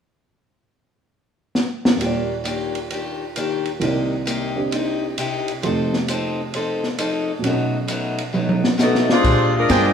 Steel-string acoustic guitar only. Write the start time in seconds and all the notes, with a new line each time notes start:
1.99 D#3 A#3 D4 G4
2.44 D#3 A#3 D4 G4
2.91 D#3 A#3 D4 G4
3.37 D#3 A#3 D4 G4
3.81 C3 A#3 D#4 G4
4.26 C3 A#3 D#4 G4
4.71 C3 A#3 D#4 G4
5.18 C3 A#3 D#4 G4
5.62 F3 C4 D#4 A4
6.09 F3 C4 D#4 A4
6.54 F3 C4 D#4 A4
6.99 F3 C4 D#4 A4
7.44 B2 F#3 A3 D#4
7.88 B2 F#3 A3 D#4
8.33 B2 F#3 A3 D#4
8.78 B2 F#3 A3 D#4
9.23 A#2 G#3 D4 G4
9.69 A#2 G#3 D4 G4